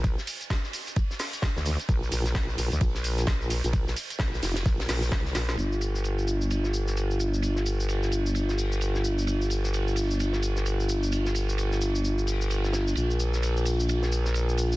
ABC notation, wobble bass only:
X:1
M:4/4
L:1/16
Q:"Swing 16ths" 1/4=130
K:Gm
V:1 name="Wobble bass" clef=bass
B,,, z12 D,,2 z | B,,,2 B,,,2 B,,,2 B,,, D,, B,,,4 B,,,3 B,,,- | B,,, B,,, z2 B,,, B,,, F,,,2 B,,,2 B,,,2 C,,2 B,,,2 | G,,,16- |
G,,,16- | G,,,16- | G,,,16 | B,,,16 |]